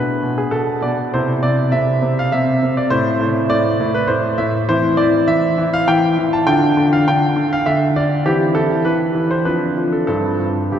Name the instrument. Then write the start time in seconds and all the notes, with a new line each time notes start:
grand piano
Already playing: B2 D4 E4 B4
0.22 B2
0.38 G#4
0.51 B2 A4
0.82 B2 D5
1.14 C3 C4 E4 C5
1.43 C3 D5
1.72 C3 E5
2.02 C3
2.19 F5
2.32 C3 E5
2.63 C3
2.77 D5
2.90 A2 C4 E4 C5
3.21 A2
3.50 A2 D5
3.80 A2
3.94 B4
4.08 A2 C5
4.38 A2 E5
4.69 E3 C4 E4 C5
4.97 E3 D5
5.28 E3 E5
5.58 E3
5.74 F5
5.88 E3 G5
6.18 E3
6.33 A5
6.47 D3 D4 F4 G5
6.77 D3
6.93 F5
7.08 D3 G5
7.36 D3
7.53 F5
7.66 D3 E5
7.96 D3 D5
8.26 E3 C4 E4 G4
8.55 E3 A4
8.85 E3 B4
9.15 E3
9.31 C5
9.45 F3 C4 D4 B4
9.76 F3
9.92 A4
10.07 G2 C4 D4 A4
10.40 G2
10.72 G2 G4